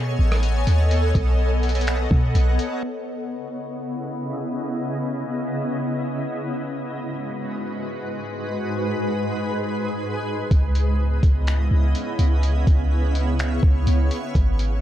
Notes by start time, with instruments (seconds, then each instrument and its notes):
Already playing: 808-style bass B2, ambient pad B3 A4 C#5 D#5 G#5
0.19 808-style bass A1
0.32 cross-stick
0.43 closed hi-hat
0.67 808-style bass D#2, closed hi-hat
0.91 ambient pad F#5, closed hi-hat
1.15 808-style bass B1, kick, closed hi-hat
1.63 closed hi-hat
1.69 closed hi-hat
1.75 closed hi-hat
1.81 closed hi-hat
1.87 finger snap, closed hi-hat
2.11 808-style bass B2, kick
2.35 808-style bass B1, closed hi-hat
2.59 closed hi-hat
2.83 ambient pad C#3 B3 E4 D#5
6.67 ambient pad G#2 G#3 F#4 B4
8.59 ambient pad G#4
10.51 808-style bass C#2, ambient pad C#3 B3 E4 D#5, kick, closed hi-hat
10.75 closed hi-hat
11.23 808-style bass C#2, kick, closed hi-hat
11.47 finger snap, closed hi-hat
11.71 808-style bass C#2
11.95 closed hi-hat
12.19 808-style bass C#2, closed hi-hat
12.43 ambient pad C#5, closed hi-hat
12.67 808-style bass C#2, kick, closed hi-hat
13.15 closed hi-hat
13.39 finger snap, closed hi-hat
13.63 808-style bass C#2, kick
13.87 808-style bass C#2, closed hi-hat
14.11 closed hi-hat
14.35 808-style bass G#1, ambient pad G#3 D#4 F#4 B4, kick, closed hi-hat
14.59 closed hi-hat